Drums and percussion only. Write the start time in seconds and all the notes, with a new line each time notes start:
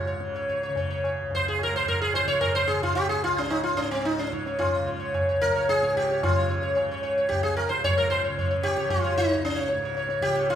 0.21 tabla te
0.35 tabla te
0.49 tabla ke
0.62 tabla te
0.76 tabla tin, tabla ge
1.04 tabla na
1.31 tabla tin, tabla ge
1.59 tabla na
1.86 tabla tin, tabla ge
2.14 tabla na
2.28 tabla ke
2.41 tabla na, tabla ge
2.69 tabla te
2.83 tabla ge
2.97 tabla na
3.24 tabla na
3.51 tabla na
3.78 tabla ke
4.05 tabla te
4.19 tabla te
4.33 tabla ke
4.46 tabla te
4.60 tabla na, tabla ge
4.88 tabla ge
5.15 tabla na, tabla ge
5.42 tabla ge
5.69 tabla te
5.83 tabla te
5.96 tabla ke
6.10 tabla te
6.23 tabla na, tabla ge
6.77 tabla na
7.04 tabla na
7.31 tabla tin, tabla ge
7.58 tabla na
7.71 tabla ke
7.84 tabla tin, tabla ge
8.11 tabla na
8.38 tabla tin, tabla ge
8.64 tabla na
8.78 tabla ke
8.90 tabla na, tabla ge
9.17 tabla ge
9.43 tabla te
9.69 tabla te
9.95 tabla te
10.09 tabla te
10.22 tabla ke
10.34 tabla te
10.47 tabla te